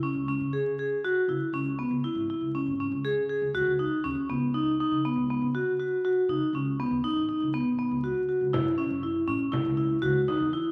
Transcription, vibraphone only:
0.03 C#4
0.28 C#4
0.53 G#4
0.79 G#4
1.04 F#4
1.29 E4
1.54 C#4
1.78 B3
2.04 E4
2.30 E4
2.55 C#4
2.80 C#4
3.04 G#4
3.29 G#4
3.55 F#4
3.79 D#4
4.04 C#4
4.30 B3
4.54 D#4
4.80 D#4
5.05 B3
5.30 B3
5.55 F#4
5.80 F#4
6.05 F#4
6.29 D#4
6.55 C#4
6.80 B3
7.04 D#4
7.29 D#4
7.54 B3
7.79 B3
8.04 F#4
8.29 F#4
8.53 E4
8.78 C#4
9.03 E4
9.28 C#4
9.52 E4
9.77 E4
10.02 F#4
10.28 D#4
10.53 E4

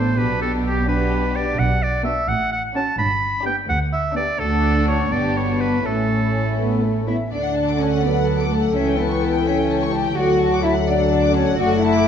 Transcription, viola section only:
Already playing: B3
0.18 B3
0.89 D4
2.05 B3
2.76 C#4
3.46 B3
4.16 B3
4.40 D4
5.11 B3
5.84 A3
6.58 B3
6.83 A3
7.08 B3
7.33 A4
10.17 A4

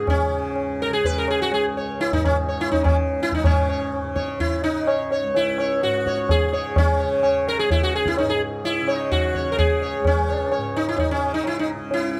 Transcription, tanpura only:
Already playing: C#2 G#2 C#3
0.29 C#3
0.90 C#3
1.50 C#2
2.11 G#2
2.70 C#3
3.32 C#3
3.43 G#2
4.04 C#3
4.64 C#3
5.23 C#2
5.83 G#2
6.43 C#3
7.03 C#3
7.63 C#2
8.22 G#2
8.81 C#3
9.40 C#3
10.00 C#2
10.57 G#2
11.16 C#3
11.75 C#3

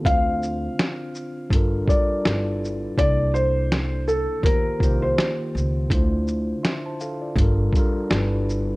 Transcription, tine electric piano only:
0.01 D3 C4 D4
0.06 F4 C5
1.49 G3 D4 F4
1.54 A4 A#4
1.85 G3 D4 F4
1.89 A4 A#4
2.21 G3 D4 E4 F4
2.26 A4 A#4
2.34 B4
2.95 C3 A#3 D4
3.00 E4 A4
4.40 D#3 A#3 F4
4.45 G4 C5
4.79 D#3 A#3 F4
4.83 G4 C5
5.88 D3 D4 E4
5.93 F4 C5
6.63 E5 C6
6.86 C5 A5
7.01 A4 F5
7.21 F4 D5
7.37 G3 D4 F4
7.42 A4 A#4
7.73 G3 D4 F4
7.78 A4 A#4
8.10 G3 D4 E4 F4
8.15 A4 B4

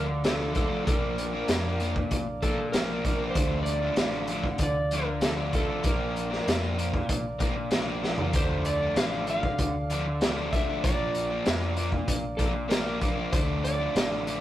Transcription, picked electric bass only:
Already playing: D2
0.87 A#1
1.48 F2
2.11 A#1
3.35 D2
3.98 A1
4.58 D2
5.84 A#1
6.47 F2
7.09 A#1
8.33 D2
8.96 A1
9.58 D2
10.83 A#1
11.47 F2
12.08 A#1
13.33 D2
13.95 A1

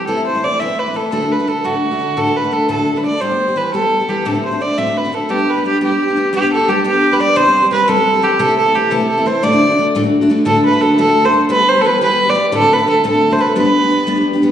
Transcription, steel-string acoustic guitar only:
0.07 C3 E3 A3 C4 E4
0.17 A3 C4 E4
0.35 A3 C4 E4
0.44 E3 A3 C4 E4
0.60 C3 E3 A3 C4 E4
0.69 A3 C4 E4
0.86 A3 C4 E4
0.94 E3 A3 C4 E4
1.12 D2 A2 D3 A3 D4 F#4
1.21 D3 A3 D4 F#4
1.38 D3 A3 D4 F#4
1.47 D3 A3 D4 F#4
1.64 D2 A2 D3 A3 D4 F#4
1.74 D3 A3 D4 F#4
1.91 D3 A3 D4 F#4
1.99 D3 A3 D4 F#4
2.17 D2 A2 D3 A3 D4 F#4
2.26 D3 A3 D4 F#4
2.43 D3 A3 D4 F#4
2.51 D3 A3 D4 F#4
2.68 D2 A2 D3 A3 D4 F#4
2.78 D3 A3 D4 F#4
2.96 D3 A3 D4 F#4
3.04 D3 A3 D4 F#4
3.21 E3 G3 B3 G4
3.29 G3 B3 G4
3.48 G3 B3 G4
3.56 E3 G3 B3 G4
3.73 E3 G3 B3 G4
3.83 G3 B3 G4
4.00 G3 B3 G4
4.08 E3 G3 B3 G4
4.25 D2 A2 D3 A3 C4 F#4
4.34 D3 A3 C4 F#4
4.51 D3 A3 C4 F#4
4.61 D3 A3 C4 F#4
4.78 D2 A2 D3 A3 C4 F#4
4.86 D3 A3 C4 F#4
5.05 D3 A3 C4 F#4
5.12 D3 A3 C4 F#4
5.29 G3 B3 D4 G4
5.38 B3 D4 G4
5.56 B3 D4 G4
5.64 G3 B3 D4 G4
5.81 G3 B3 D4 G4
5.91 B3 D4 G4
6.08 B3 D4 G4
6.16 G3 B3 D4 G4
6.33 G3 B3 D4 G4
6.42 B3 D4 G4
6.59 B3 D4 G4
6.68 G3 B3 D4 G4
6.84 G3 B3 D4 G4
6.94 B3 D4 G4
7.11 B3 D4 G4
7.20 G3 B3 D4 G4
7.36 C3 E3 G3 C4 G4
7.45 G3 C4 G4
7.63 G3 C4 G4
7.71 E3 G3 C4 G4
7.88 C3 E3 G3 C4 G4
7.97 G3 C4 G4
8.14 G3 C4 G4
8.22 E3 G3 C4 G4
8.39 C3 E3 A3 C4 E4
8.48 A3 C4 E4
8.66 A3 C4 E4
8.74 E3 A3 C4 E4
8.91 C3 E3 A3 C4 E4
9.00 A3 C4 E4
9.18 A3 C4 E4
9.26 E3 A3 C4 E4
9.43 D2 A2 D3 A3 D4 F#4
9.52 D3 A3 D4 F#4
9.70 D3 A3 D4 F#4
9.78 D3 A3 D4 F#4
9.95 D2 A2 D3 A3 D4 F#4
10.03 D3 A3 D4 F#4
10.21 D3 A3 D4 F#4
10.29 D3 A3 D4 F#4
10.45 D2 A2 D3 A3 D4 F#4
10.55 D3 A3 D4 F#4
10.73 D3 A3 D4 F#4
10.81 D3 A3 D4 F#4
10.98 D2 A2 D3 A3 D4 F#4
11.07 D3 A3 D4 F#4
11.24 D3 A3 D4 F#4
11.32 D3 A3 D4 F#4
11.49 E3 G3 B3 G4
11.59 G3 B3 G4
11.76 G3 B3 G4
11.84 E3 G3 B3 G4
12.01 E3 G3 B3 G4
12.10 G3 B3 G4
12.28 G3 B3 G4
12.35 E3 G3 B3 G4
12.52 D2 A2 D3 A3 C4 F#4
12.61 D3 A3 C4 F#4
12.78 D3 A3 C4 F#4
12.87 D3 A3 C4 F#4
13.04 D2 A2 D3 A3 C4 F#4
13.13 D3 A3 C4 F#4
13.30 D3 A3 C4 F#4
13.38 D3 A3 C4 F#4
13.56 G3 B3 D4 G4
13.65 B3 D4 G4
13.82 B3 D4 G4
13.90 G3 B3 D4 G4
14.07 G3 B3 D4 G4
14.16 B3 D4 G4
14.33 B3 D4 G4
14.42 G3 B3 D4 G4

